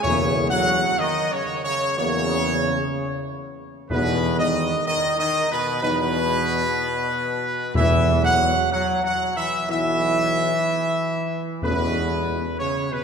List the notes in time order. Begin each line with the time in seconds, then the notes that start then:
0.01 E2 C#3 F#3 A#3 C#5
0.49 F#3 F#5
0.98 D#3 D#5
1.32 C#3 C#5
1.64 C#3 C#5
1.97 E2 C#3 F#3 A#3 C#5
3.90 E2 B2 F#3 D#4 B4
4.38 D#3 D#5
4.86 D#3 D#5
5.18 D#3 D#5
5.51 B2 B4
5.82 E2 B2 F#3 D#4 B4
7.75 E2 E3 F#3 E4 E5
8.22 F#3 F#5
8.72 F#3 F#5
9.04 F#3 F#5
9.37 E3 E5
9.68 B1 E3 F#3 E4 E5
11.62 E2 B2 A3 C#4 B4
12.59 C#3 C#5
12.93 B2 B4